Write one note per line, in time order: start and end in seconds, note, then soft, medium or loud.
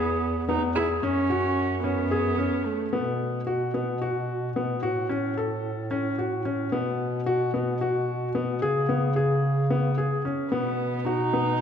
0.00 0.99 E2 medium
0.00 0.44 B3 medium
0.00 0.41 G#4 medium
0.49 0.72 B3 medium
0.49 0.61 D#4 medium
0.75 0.88 E4 medium
0.75 0.99 G#4 medium
1.03 2.76 F#2 medium
1.03 1.26 C#4 medium
1.03 1.81 C#4 medium
1.30 1.77 F#4 medium
1.83 2.67 B3 medium
1.83 2.08 C#4 medium
2.11 2.35 G#4 medium
2.38 2.85 C#4 medium
2.65 2.93 A3 medium
2.93 4.79 B2 medium
2.93 3.40 B3 medium
3.47 3.70 F#4 medium
3.74 3.98 B3 medium
4.02 4.48 F#4 medium
4.56 4.79 B3 medium
4.83 6.69 A2 medium
4.83 5.06 F#4 medium
5.09 5.33 C#4 medium
5.37 5.84 A4 medium
5.91 6.14 C#4 medium
6.18 6.42 F#4 medium
6.45 6.69 C#4 medium
6.72 8.59 B2 medium
6.72 7.19 B3 medium
7.26 7.50 F#4 medium
7.54 7.77 B3 medium
7.81 8.28 F#4 medium
8.35 8.58 B3 medium
8.62 10.36 C#3 medium
8.62 8.86 G#4 medium
8.89 9.13 B3 medium
9.16 9.63 G#4 medium
9.70 9.94 B3 medium
9.98 10.21 G#4 medium
10.25 10.48 C#4 medium
10.51 11.61 B2 medium
10.51 11.06 B3 medium
10.51 10.99 B3 medium
11.05 11.61 D#4 loud
11.05 11.30 F#4 medium
11.33 11.57 B3 medium